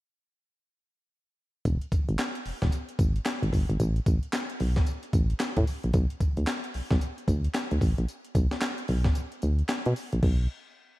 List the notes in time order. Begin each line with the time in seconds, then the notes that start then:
1.65 E1, kick, closed hi-hat, tambourine
1.81 closed hi-hat
1.92 kick, closed hi-hat, tambourine
2.09 G#1, closed hi-hat
2.19 snare, clap, closed hi-hat, tambourine
2.35 closed hi-hat
2.46 E1, open hi-hat
2.62 E1, kick, snare, closed hi-hat
2.72 closed hi-hat, tambourine
2.89 closed hi-hat
2.99 G#1, kick, closed hi-hat, tambourine
3.16 closed hi-hat
3.26 snare, clap, closed hi-hat, tambourine
3.43 G#1, closed hi-hat
3.53 G1, kick, open hi-hat, tambourine
3.70 G#1, closed hi-hat
3.80 A1, closed hi-hat, tambourine
3.96 closed hi-hat
4.06 A1, kick, closed hi-hat, tambourine
4.23 closed hi-hat
4.33 snare, clap, closed hi-hat, tambourine
4.50 closed hi-hat
4.60 B1, open hi-hat
4.76 kick, snare, closed hi-hat
4.86 closed hi-hat, tambourine
5.03 closed hi-hat
5.13 A1, kick, closed hi-hat, tambourine
5.30 closed hi-hat
5.40 snare, clap, closed hi-hat, tambourine
5.57 A2, kick, closed hi-hat
5.67 open hi-hat, tambourine
5.84 A#1, closed hi-hat
5.93 B1, kick, closed hi-hat, tambourine
6.10 closed hi-hat
6.20 kick, closed hi-hat, tambourine
6.37 D2, closed hi-hat
6.47 snare, clap, closed hi-hat, tambourine
6.64 closed hi-hat
6.74 B1, open hi-hat
6.90 B1, kick, snare, closed hi-hat
7.01 closed hi-hat, tambourine
7.18 closed hi-hat
7.28 D2, kick, closed hi-hat, tambourine
7.44 closed hi-hat
7.54 snare, clap, closed hi-hat, tambourine
7.71 D2, closed hi-hat
7.81 A1, kick, open hi-hat, tambourine
7.98 A#1, closed hi-hat
8.08 closed hi-hat, tambourine
8.25 closed hi-hat
8.35 B1, kick, closed hi-hat, tambourine
8.51 snare, closed hi-hat
8.61 snare, clap, closed hi-hat, tambourine
8.78 closed hi-hat
8.88 B1, open hi-hat
9.04 kick, snare, closed hi-hat
9.15 closed hi-hat, tambourine
9.32 closed hi-hat
9.42 D2, closed hi-hat, tambourine
9.59 closed hi-hat
9.69 snare, clap, closed hi-hat, tambourine
9.86 B2, closed hi-hat
9.96 open hi-hat, tambourine
10.12 A#1, closed hi-hat
10.23 B1, kick, crash